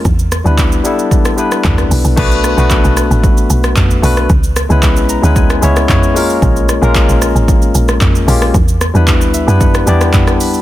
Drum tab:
CC |----------------|x---------------|----------------|----------------|
HH |--------------o-|--------------o-|--------------o-|--------------o-|
SH |xxxxxxxxxxxxxxxx|xxxxxxxxxxxxxxxx|xxxxxxxxxxxxxxxx|xxxxxxxxxxxxxxxx|
CP |----x-------x---|----x-------x---|----x-------x---|----x-------x---|
SD |--r------r-r-r--|--r---r----r---r|--r------r-r----|--r---r----r---r|
T2 |------------o---|------------o---|------------o---|------------o---|
BD |o---o---o---o---|o---o---o---o---|o---o---o---o---|o---o---o---o---|

CC |----------------|
HH |--------------o-|
SH |xxxxxxxxxxxxxxxx|
CP |----x-------x---|
SD |--r------r-r-r--|
T2 |------------o---|
BD |o---o---o---o---|